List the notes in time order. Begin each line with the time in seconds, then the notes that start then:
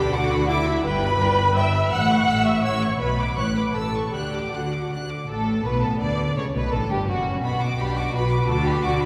Already playing: D2 D3 G5 B5
0.13 F#4 F#5 D6
0.31 B5
0.48 E4 E5 D6
0.66 B5
0.84 G1 G2 B4 G5 B5
1.03 B5
1.20 G1 G2 G5
1.37 B5
1.55 G1 G2 E5 G5 E6
1.74 B5
1.91 A1 A2 F#5 E6 F#6
2.10 C#6
2.27 A1 A2 E6
2.45 E5 C#6 E6
2.63 A1 A2 C#5 C#6 E6
2.82 C#6
3.01 B1 B2 B4 B5
3.20 D6
3.37 A1 A2 C#5 C#6 F#6
3.56 B4 B5 D6
3.75 A1 A2 A4 A5 E6
3.95 C#6
4.13 D2 D3 G4 G5 F#6
4.34 D6
4.52 D2 D3 F#4 F#5 F#6
4.72 D6
4.90 D2 D3 F#6
5.10 D6
5.28 A1 A2 A4
5.64 B1 B2 B3 B4
5.82 A1 A2 A4
6.00 D2 D3 D5
6.36 C#2 C#3 A3 C#5
6.55 B1 B2 B4
6.73 A1 A2 D4 A4
6.90 G1 G2 G4
7.08 F#1 F#2 C#4 F#4
7.43 B1 B2 B3 F#4 B5
7.61 D6
7.78 B1 B2 D4 G4 B5
7.97 F#4 D6
8.13 B1 B2 F#4 B4 B5
8.31 D6
8.48 D2 D3 A4 D6
8.65 G4 B5
8.82 D2 D3 F#4 D6
8.98 D4 B5